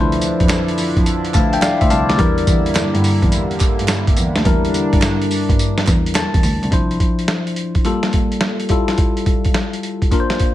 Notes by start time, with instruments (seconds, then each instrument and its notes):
Already playing: analog synth pad D3 F3 D4 E4, tine electric piano F3 D4 E4 B4
0.01 tine electric piano C5
0.12 closed hi-hat
0.21 closed hi-hat, tambourine
0.40 cello F2, kick, closed hi-hat
0.49 snare, clap, closed hi-hat, tambourine
0.68 closed hi-hat
0.78 cello F2, open hi-hat, tambourine
0.96 cello F2, kick, closed hi-hat
1.06 closed hi-hat, tambourine
1.25 closed hi-hat
1.34 cello D2, tine electric piano F5 A5, kick, clap, closed hi-hat, tambourine
1.53 tine electric piano E5 G5, closed hi-hat
1.62 tine electric piano D5 F5, snare, clap, closed hi-hat, tambourine
1.81 cello D2, tine electric piano C5 E5, kick, closed hi-hat
1.90 cello C2, tine electric piano D5 F5 A5, closed hi-hat, tambourine
2.09 cello D2, tine electric piano D5, snare, closed hi-hat
2.17 cello E2, analog synth pad D3 G3 A#3, tine electric piano G3 D4 E4 A#4, kick, closed hi-hat
2.38 closed hi-hat
2.47 cello E2, kick, closed hi-hat, tambourine
2.66 closed hi-hat
2.75 cello G2, snare, clap, closed hi-hat, tambourine
2.94 cello G2, closed hi-hat
3.04 open hi-hat, tambourine
3.22 cello E2, kick, closed hi-hat
3.32 closed hi-hat, tambourine
3.51 closed hi-hat
3.60 cello G2, kick, clap, closed hi-hat, tambourine
3.79 cello G2, closed hi-hat
3.88 snare, clap, closed hi-hat, tambourine
4.07 kick, closed hi-hat
4.17 cello E2, closed hi-hat, tambourine
4.36 cello D2, snare, closed hi-hat
4.44 cello E2, tine electric piano G3 D4 E4 A#4, analog synth pad D4, kick, closed hi-hat
4.65 closed hi-hat
4.74 closed hi-hat, tambourine
4.93 cello G2, kick, closed hi-hat
5.02 snare, clap, closed hi-hat, tambourine
5.22 closed hi-hat
5.31 cello G2, open hi-hat, tambourine
5.49 cello G2, kick, closed hi-hat
5.59 closed hi-hat, tambourine
5.78 snare, closed hi-hat
5.87 cello E2, kick, clap, closed hi-hat, tambourine
6.06 closed hi-hat
6.15 tine electric piano A5, snare, clap, closed hi-hat, tambourine
6.34 cello E2, kick, closed hi-hat
6.43 cello D2, open hi-hat, tambourine
6.63 cello C2, closed hi-hat
6.71 tine electric piano F3 D4 E4 C5, kick, closed hi-hat
6.91 closed hi-hat
7.00 kick, closed hi-hat
7.19 closed hi-hat
7.28 snare, closed hi-hat
7.47 closed hi-hat
7.56 closed hi-hat
7.75 kick, closed hi-hat
7.85 tine electric piano G3 A#3 F4 A4, closed hi-hat
8.03 snare, closed hi-hat
8.13 kick, closed hi-hat
8.32 closed hi-hat
8.41 snare, closed hi-hat
8.60 closed hi-hat
8.69 tine electric piano G3 E4 F4 A4, kick, closed hi-hat
8.88 snare, closed hi-hat
8.98 kick, closed hi-hat
9.17 closed hi-hat
9.26 kick, closed hi-hat
9.45 kick, closed hi-hat
9.54 snare, closed hi-hat
9.73 closed hi-hat
9.83 closed hi-hat
10.02 kick, closed hi-hat
10.11 tine electric piano A#3 D4 F4 A#4, kick, closed hi-hat
10.20 tine electric piano C5
10.30 snare, closed hi-hat
10.40 kick, closed hi-hat